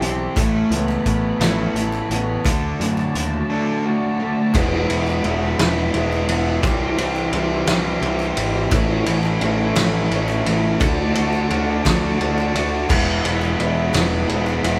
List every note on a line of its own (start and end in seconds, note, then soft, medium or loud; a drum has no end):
0.00 0.27 B1 medium
0.00 0.33 C3 medium
0.00 0.33 E3 medium
0.00 0.36 G3 medium
0.00 0.36 C4 medium
0.00 0.36 E4 medium
0.00 0.35 G4 medium
0.00 0.36 G4 medium
0.00 0.33 E5 medium
0.00 0.36 C6 medium
0.00 closed hi-hat medium
0.35 0.62 A1 loud
0.35 0.69 A2 loud
0.35 0.69 E3 loud
0.35 0.69 A3 medium
0.35 2.44 A4 medium
0.35 2.44 C#5 medium
0.35 2.43 B5 medium
0.35 kick loud
0.35 clap loud
0.35 closed hi-hat medium
0.70 0.97 C#2 loud
0.70 1.03 A2 medium
0.70 1.03 E3 medium
0.70 1.04 B3 medium
0.70 clap soft
0.70 closed hi-hat medium
0.89 clap medium
1.05 1.32 A1 loud
1.05 2.09 B3 medium
1.05 kick medium
1.05 closed hi-hat medium
1.40 1.66 A1 medium
1.40 1.73 A2 medium
1.40 1.74 E3 medium
1.40 1.74 A3 medium
1.40 2.45 E4 medium
1.40 snare loud
1.40 clap loud
1.40 closed hi-hat medium
1.74 2.01 A1 medium
1.74 2.07 A2 medium
1.74 2.07 E3 medium
1.74 2.45 A4 medium
1.74 closed hi-hat medium
1.93 clap medium
2.10 2.36 A1 medium
2.10 2.42 A2 medium
2.10 2.42 E3 medium
2.10 2.45 B3 medium
2.10 closed hi-hat medium
2.45 2.71 D2 medium
2.45 2.78 D3 medium
2.45 2.79 A3 medium
2.45 2.79 D4 loud
2.45 4.52 F#4 medium
2.45 4.53 D5 medium
2.45 4.53 A5 medium
2.45 kick loud
2.45 clap loud
2.45 closed hi-hat medium
2.80 3.06 F#2 medium
2.80 3.12 D3 medium
2.80 4.53 F#3 medium
2.80 3.12 A3 medium
2.80 closed hi-hat medium
2.98 clap medium
3.14 3.41 D#2 medium
3.14 4.18 A3 medium
3.14 closed hi-hat medium
3.50 3.83 D3 medium
3.50 3.83 A3 medium
3.50 3.83 D4 loud
3.85 4.16 D3 medium
3.85 4.17 A3 medium
3.85 4.54 F#4 medium
4.20 4.51 D3 medium
4.20 4.51 A3 medium
4.54 4.84 E1 loud
4.54 5.24 E2 medium
4.54 5.24 B2 medium
4.54 4.92 E3 loud
4.54 4.90 G#3 loud
4.54 4.89 B3 medium
4.54 4.89 E4 loud
4.54 6.61 G#4 medium
4.54 8.68 E5 medium
4.54 6.61 B5 medium
4.54 kick loud
4.54 clap medium
4.54 ride loud
4.89 5.19 E1 medium
4.89 5.23 E3 medium
4.89 5.24 G#3 medium
4.89 5.25 B3 medium
4.89 5.27 E4 medium
4.89 ride medium
5.07 clap medium
5.23 5.54 E1 medium
5.23 5.61 E3 medium
5.23 5.59 G#3 medium
5.23 5.58 B3 medium
5.23 5.57 E4 medium
5.23 ride medium
5.43 clap soft
5.58 5.89 E1 medium
5.58 5.91 E3 medium
5.58 5.92 G#3 medium
5.58 5.93 B3 medium
5.58 5.95 E4 medium
5.58 snare loud
5.58 clap loud
5.58 ride medium
5.91 6.24 E1 medium
5.91 6.30 E3 medium
5.91 6.28 G#3 medium
5.91 6.27 B3 medium
5.91 ride medium
5.96 6.27 E4 medium
6.12 clap medium
6.27 6.58 E1 medium
6.27 6.62 E3 medium
6.27 6.61 G#3 medium
6.27 6.61 B3 medium
6.27 6.64 E4 medium
6.27 ride medium
6.47 clap soft
6.61 6.93 C2 medium
6.61 7.32 C3 medium
6.61 7.30 E3 medium
6.61 6.99 G3 loud
6.61 6.97 C4 loud
6.61 6.96 E4 loud
6.61 8.70 G4 medium
6.61 8.70 C6 medium
6.61 kick loud
6.61 clap loud
6.61 ride loud
6.97 7.28 C2 medium
6.97 7.30 E3 medium
6.97 7.31 G3 medium
6.97 7.32 C4 medium
6.97 7.34 E4 medium
6.97 ride medium
7.16 clap medium
7.31 7.63 C2 medium
7.31 7.98 E3 medium
7.31 7.68 G3 medium
7.31 7.66 C4 medium
7.31 7.65 E4 medium
7.31 ride medium
7.52 clap soft
7.66 7.97 C2 loud
7.66 8.01 E3 medium
7.66 8.00 G3 medium
7.66 8.01 C4 medium
7.66 8.02 E4 medium
7.66 snare loud
7.66 clap loud
7.66 ride loud
8.00 8.32 C2 medium
8.00 8.68 E3 medium
8.00 8.37 G3 medium
8.00 8.35 C4 medium
8.00 8.33 E4 medium
8.00 ride medium
8.20 clap medium
8.34 8.67 G#1 medium
8.34 8.70 E3 medium
8.34 8.69 C4 medium
8.34 8.68 E4 medium
8.34 clap soft
8.34 ride medium
8.38 8.70 G3 medium
8.55 clap soft
8.70 9.02 A1 loud
8.70 9.40 A2 loud
8.70 9.39 E3 loud
8.70 9.08 A3 loud
8.70 9.06 C#4 loud
8.70 9.04 E4 medium
8.70 10.79 A4 medium
8.70 10.78 C#5 medium
8.70 10.79 B5 medium
8.70 kick loud
8.70 clap loud
8.70 ride loud
9.05 9.37 A1 medium
9.05 9.40 E3 medium
9.05 9.42 A3 medium
9.05 9.42 C#4 medium
9.05 9.43 E4 medium
9.05 ride medium
9.24 clap medium
9.40 9.71 A1 loud
9.40 10.08 E3 medium
9.40 9.77 A3 medium
9.40 9.76 C#4 medium
9.40 9.74 E4 medium
9.40 ride medium
9.60 clap soft
9.75 10.06 A1 medium
9.75 10.09 E3 medium
9.75 10.09 A3 medium
9.75 10.10 C#4 medium
9.75 10.12 E4 medium
9.75 snare loud
9.75 clap loud
9.75 ride loud
10.09 10.41 A1 loud
10.09 10.77 E3 medium
10.09 10.47 A3 medium
10.09 10.45 C#4 medium
10.09 10.43 E4 medium
10.09 ride medium
10.29 clap medium
10.44 10.76 A1 medium
10.44 10.80 E3 medium
10.44 10.79 A3 medium
10.44 10.79 C#4 medium
10.44 10.78 E4 medium
10.44 clap soft
10.44 ride medium
10.64 clap soft
10.79 11.11 D2 loud
10.79 11.47 D3 medium
10.79 11.17 A3 loud
10.79 11.15 D4 loud
10.79 12.88 F#4 medium
10.79 11.13 F#4 loud
10.79 12.87 D5 medium
10.79 12.88 A5 medium
10.79 kick loud
10.79 clap loud
10.79 ride loud
10.99 clap soft
11.14 11.46 D2 medium
11.14 11.48 D3 medium
11.14 11.49 A3 medium
11.14 11.50 D4 medium
11.14 11.51 F#4 medium
11.14 ride medium
11.34 clap medium
11.49 11.80 D2 medium
11.49 12.17 D3 medium
11.49 11.86 A3 medium
11.49 11.85 D4 medium
11.49 11.83 F#4 medium
11.49 ride medium
11.69 clap soft
11.84 12.15 D2 medium
11.84 12.18 D3 medium
11.84 12.19 A3 medium
11.84 12.20 D4 medium
11.84 12.21 F#4 medium
11.84 kick medium
11.84 snare loud
11.84 clap loud
11.84 ride loud
12.18 12.50 D2 medium
12.18 12.87 D3 medium
12.18 12.55 A3 medium
12.18 12.53 D4 medium
12.18 ride medium
12.23 12.51 F#4 medium
12.39 clap medium
12.53 12.85 D2 medium
12.53 12.89 D3 medium
12.53 12.88 A3 medium
12.53 12.87 D4 medium
12.53 12.86 F#4 medium
12.53 ride medium
12.73 clap soft
12.88 13.20 E1 loud
12.88 13.59 E2 loud
12.88 13.59 B2 loud
12.88 13.27 E3 loud
12.88 13.25 G#3 loud
12.88 13.24 B3 loud
12.88 13.23 E4 loud
12.88 14.79 G#4 medium
12.88 14.79 E5 medium
12.88 14.79 B5 medium
12.88 kick loud
12.88 clap medium
12.88 crash loud
13.24 13.54 E1 medium
13.24 13.58 E3 medium
13.24 13.58 G#3 medium
13.24 13.59 B3 medium
13.24 13.61 E4 medium
13.24 ride medium
13.42 clap medium
13.58 13.89 E1 medium
13.58 13.96 E3 medium
13.58 13.95 G#3 medium
13.58 13.93 B3 medium
13.58 13.93 E4 medium
13.58 ride medium
13.77 clap soft
13.93 14.24 E1 medium
13.93 14.28 E3 medium
13.93 14.29 G#3 medium
13.93 14.30 B3 medium
13.93 14.32 E4 medium
13.93 snare loud
13.93 clap loud
13.93 ride loud
14.28 14.59 E1 loud
14.28 14.66 E3 medium
14.28 14.65 G#3 medium
14.28 14.63 B3 medium
14.28 14.63 E4 medium
14.28 ride medium
14.47 clap medium
14.63 14.79 E1 loud
14.63 14.79 E3 medium
14.63 14.79 G#3 medium
14.63 14.79 B3 medium
14.63 14.79 E4 medium
14.63 clap soft
14.63 ride medium